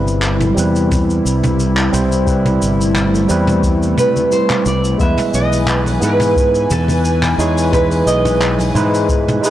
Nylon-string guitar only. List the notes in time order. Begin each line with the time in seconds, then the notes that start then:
3.98 B4
4.32 C5
4.67 D5
5.01 E5
5.35 D#5
5.87 C#5
6.03 B4
6.51 A4
6.71 A4
7.40 G#4
7.73 B4
8.07 D#5
9.45 G#4